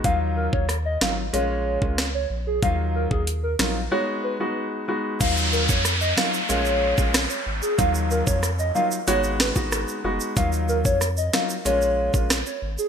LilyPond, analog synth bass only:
\new Staff \with { instrumentName = "Analog synth bass" } { \clef bass \time 4/4 \key ees \minor \tempo 4 = 93 ees,8. ees,8. aes,,8 bes,,8. des,8. bes,,8 | ees,8. ees,8. bes,,8 r2 | ees,8. f,8. r8 bes,,8. bes,,8 r16 aes,,16 r16 | ees,8. f,8. r8 aes,,8. aes,,8 r16 ges,,16 r16 |
ees,8. f,8. r8 bes,,8. bes,,8 r16 aes,,16 r16 | }